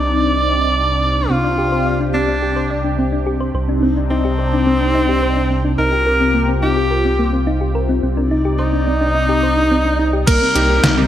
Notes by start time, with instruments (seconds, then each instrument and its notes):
Already playing: analog synth bass C2, analog synth pad C3 C4 D4 D#4, tenor saxophone D5
1.29 analog synth bass C2, synth arpeggio sound C4, tenor saxophone F4, analog synth pad G4
1.44 synth arpeggio sound D4
1.58 synth arpeggio sound G4
1.72 synth arpeggio sound C5
1.86 synth arpeggio sound D5
2.00 synth arpeggio sound D4
2.14 synth arpeggio sound C4, tenor saxophone D4
2.28 synth arpeggio sound D4
2.42 synth arpeggio sound G4
2.56 synth arpeggio sound C5
2.70 synth arpeggio sound D5
2.84 synth arpeggio sound D4
2.98 synth arpeggio sound C4
3.12 synth arpeggio sound D4
3.26 synth arpeggio sound G4
3.40 synth arpeggio sound C5
3.54 analog synth bass C2, analog synth pad C4 D4 D#4, synth arpeggio sound C5
3.69 synth arpeggio sound D4
3.83 synth arpeggio sound C4
3.97 synth arpeggio sound D4
4.10 tenor saxophone C4, synth arpeggio sound D#4
4.25 synth arpeggio sound G4
4.39 synth arpeggio sound C5
4.53 synth arpeggio sound D4
4.67 synth arpeggio sound C4
4.81 synth arpeggio sound D4
4.95 synth arpeggio sound D#4
5.09 synth arpeggio sound G4
5.23 synth arpeggio sound C5
5.37 synth arpeggio sound D4
5.50 synth arpeggio sound C4
5.65 synth arpeggio sound D4
5.78 analog synth bass C2, synth arpeggio sound D#4, analog synth pad F4 G4, tenor saxophone A#4
5.92 synth arpeggio sound G4
6.07 synth arpeggio sound A#4
6.21 synth arpeggio sound C4
6.34 synth arpeggio sound A#3
6.49 synth arpeggio sound C4
6.63 synth arpeggio sound D#4, tenor saxophone G4
6.77 synth arpeggio sound G4
6.91 synth arpeggio sound A#4
7.05 synth arpeggio sound C4
7.19 synth arpeggio sound A#3
7.33 synth arpeggio sound C4
7.47 synth arpeggio sound D#4
7.61 synth arpeggio sound G4
7.75 synth arpeggio sound A#4
7.89 synth arpeggio sound C4
8.03 analog synth bass C2, synth arpeggio sound C4, analog synth pad D#4 D5
8.17 synth arpeggio sound D4
8.31 synth arpeggio sound D#4
8.45 synth arpeggio sound G4
8.59 tenor saxophone D#4, synth arpeggio sound C5
8.73 synth arpeggio sound D4
8.87 synth arpeggio sound C4
9.01 synth arpeggio sound D4
9.15 synth arpeggio sound D#4
9.29 synth arpeggio sound G4
9.43 synth arpeggio sound C5
9.57 synth arpeggio sound D4
9.71 synth arpeggio sound C4
9.85 synth arpeggio sound D4
9.99 synth arpeggio sound D#4
10.13 synth arpeggio sound G4
10.27 analog synth bass C2, analog synth pad C3 G3 A#3 D#4, synth arpeggio sound A#3, tenor saxophone A#4, synth bell A#4, kick, closed hi-hat, crash
10.41 synth arpeggio sound C4
10.55 analog synth bass C2, electric grand piano G3 A#3 C4 D#4 G4, synth arpeggio sound D#4, closed hi-hat
10.70 synth arpeggio sound G4
10.83 analog synth bass C2, synth arpeggio sound D#4, snare, closed hi-hat
10.97 electric grand piano G3 A#3 C4 D#4 G4, synth arpeggio sound C4